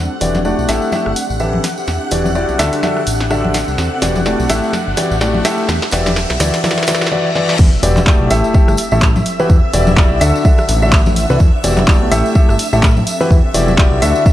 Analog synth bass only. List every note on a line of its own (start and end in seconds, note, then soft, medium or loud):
0.21 0.55 E1 medium
0.59 0.67 B1 medium
0.69 0.80 A1 medium
1.06 1.14 G1 medium
1.30 1.61 A1 medium
1.88 1.99 E2 medium
2.12 2.45 E1 medium
2.49 2.57 B1 medium
2.59 2.70 D2 medium
3.07 3.64 A1 loud
3.68 3.76 C2 medium
3.78 3.89 E2 medium
4.02 4.35 E1 medium
4.39 4.48 B1 medium
4.50 4.61 A1 loud
4.87 4.95 G1 medium
5.11 5.42 A1 medium
5.69 5.80 E2 loud
5.92 6.26 E1 medium
6.30 6.38 B1 medium
6.40 6.51 D2 loud
7.59 7.70 E2 loud
7.83 8.16 E1 medium
8.20 8.29 B1 medium
8.31 8.42 A1 medium
8.68 8.76 G1 medium
8.92 9.23 A1 medium
9.50 9.61 E2 medium
9.74 10.07 E1 medium
10.11 10.19 B1 medium
10.21 10.32 D2 loud
10.69 11.26 A1 loud
11.30 11.38 C2 medium
11.40 11.51 E2 loud
11.64 11.97 E1 medium
12.01 12.10 B1 medium
12.12 12.23 A1 loud
12.49 12.57 G1 medium
12.73 13.04 A1 medium
13.31 13.42 E2 loud
13.54 13.88 E1 medium
13.92 14.00 B1 medium
14.02 14.13 D2 medium